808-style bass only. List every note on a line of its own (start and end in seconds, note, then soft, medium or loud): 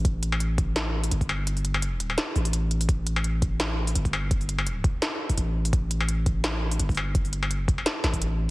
0.05 1.10 A1 loud
1.12 2.17 G1 loud
2.36 2.88 A1 loud
2.89 3.94 A1 loud
3.95 5.01 G1 loud
5.37 5.72 A1 loud
5.73 6.78 A1 loud
6.79 7.54 G1 medium
7.54 7.85 F#1 medium
8.04 8.50 A1 loud